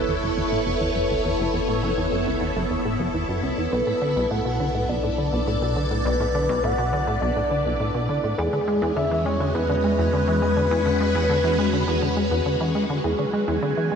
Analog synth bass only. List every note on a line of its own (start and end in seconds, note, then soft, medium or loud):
0.08 0.18 E2 medium
0.23 0.33 F#1 medium
0.37 0.43 E2 medium
0.52 0.66 A2 medium
0.67 0.76 F#1 loud
0.81 0.91 E2 medium
0.96 1.09 F#2 medium
1.10 1.20 C#2 medium
1.25 1.35 E2 medium
1.39 1.49 F#1 loud
1.54 1.60 E2 medium
1.68 1.82 A2 medium
1.83 1.93 F#1 loud
1.98 2.08 E2 medium
2.12 2.26 F#2 medium
2.27 2.37 C#2 medium
2.41 2.51 E2 medium
2.56 2.66 F#1 medium
2.71 2.76 E2 medium
2.85 2.99 A2 medium
3.00 3.10 F#1 loud
3.14 3.24 E2 medium
3.29 3.43 F#2 medium
3.43 3.53 C#2 medium
3.58 3.68 E2 medium
3.73 3.82 B1 loud
3.87 3.93 A2 medium
4.02 4.15 D3 medium
4.16 4.26 B1 loud
4.31 4.41 A2 medium
4.45 4.59 B2 medium
4.60 4.70 D3 medium
4.75 4.84 A2 medium
4.89 4.99 B1 medium
5.04 5.09 A2 medium
5.18 5.32 D3 medium
5.33 5.43 B1 loud
5.47 5.57 A2 medium
5.62 5.76 B2 medium
5.76 5.86 D3 medium
5.91 6.01 A2 medium
6.05 6.15 B1 loud
6.20 6.26 A2 medium
6.35 6.48 D3 medium
6.49 6.59 B1 loud
6.64 6.74 A2 medium
6.78 6.92 B2 medium
6.93 7.03 D3 medium
7.07 7.17 A2 medium
7.22 7.32 B1 medium
7.36 7.42 A2 medium
7.51 7.65 D3 medium
7.66 7.75 B1 medium
7.80 7.90 A2 medium
7.95 8.08 B2 medium
8.09 8.19 D3 medium
8.24 8.34 A2 medium
8.38 8.48 E2 loud
8.53 8.59 D3 medium
8.68 8.81 G#3 medium
8.82 8.92 E2 medium
8.97 9.07 D3 medium
9.11 9.25 E3 medium
9.26 9.36 G#3 medium
9.40 9.50 D3 medium
9.55 9.65 E2 medium
9.70 9.75 D3 medium
9.84 9.98 G#3 medium
9.99 10.08 E2 loud
10.13 10.23 D3 medium
10.28 10.42 E3 medium
10.42 10.52 G#3 medium
10.57 10.67 D3 medium
10.71 10.81 E2 loud
10.86 10.92 D3 medium
11.00 11.14 G#3 medium
11.15 11.25 E2 loud
11.30 11.40 D3 medium
11.44 11.58 E3 medium
11.59 11.69 G#3 medium
11.73 11.83 D3 medium
11.88 11.98 E2 loud
12.02 12.08 D3 medium
12.17 12.31 G#3 medium
12.31 12.41 E2 medium
12.46 12.56 D3 medium
12.61 12.74 E3 medium
12.75 12.85 G#3 medium
12.90 13.00 D3 medium
13.04 13.14 E2 loud
13.19 13.25 D3 medium
13.33 13.47 G#3 medium
13.48 13.58 E2 loud
13.63 13.73 D3 medium
13.77 13.91 E3 medium
13.92 13.96 G#3 medium